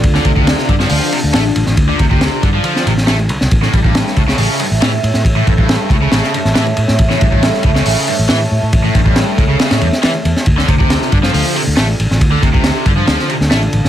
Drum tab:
RD |x-x-x-x---x-x-x-|x-x-x-x-x-x-xxx-|x-x-x-x---x-x-x-|x-x-x-x-x-x-xxx-|
HH |--------o-------|----------------|--------o-------|----------------|
SD |-o--oo-o----o--o|----o----o-oo--o|-o--oo-o----o--o|----o---oo-oo--o|
BD |o-oo--o---------|o-oo--o---------|o-oo--o---------|o-oo--o---------|

RD |x-x-x-x---x-x---|x-x-x-x-xxx-xxx-|x-x-x-x---x-x-x-|x-x-x-x-x-x-xxx-|
HH |--------o-------|----------------|--------o-------|----------------|
SD |-o--oo-o----o---|----o---oo-oo--o|-o--oo-o----o--o|----o---oo-oo--o|
BD |o-oo--o---------|o-oo--o---------|o-oo--o---------|o-oo--o---------|